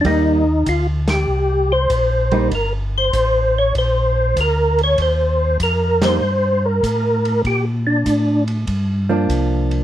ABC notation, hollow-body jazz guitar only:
X:1
M:4/4
L:1/8
Q:"Swing" 1/4=97
K:Cdor
V:1 name="Hollow-body jazz guitar"
[G,B,E] z6 [G,B,E] | z8 | z3 [G,B,E] z4 | z4 z [F,B,D]3 |]